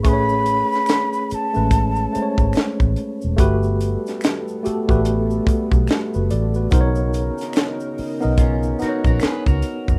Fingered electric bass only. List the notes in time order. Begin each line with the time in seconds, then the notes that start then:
0.06 A1
1.32 muted fingered electric bass stroke
1.56 A1
2.16 muted fingered electric bass stroke
2.39 G#1
2.57 muted fingered electric bass stroke
2.81 A1
3.24 E1
3.40 G1
4.67 muted fingered electric bass stroke
4.90 A1
5.48 muted fingered electric bass stroke
5.73 B1
6.16 F#1
6.32 A1
6.73 B1
7.99 muted fingered electric bass stroke
8.25 B1
8.82 muted fingered electric bass stroke
9.06 A#1
9.48 C#2
9.89 F#1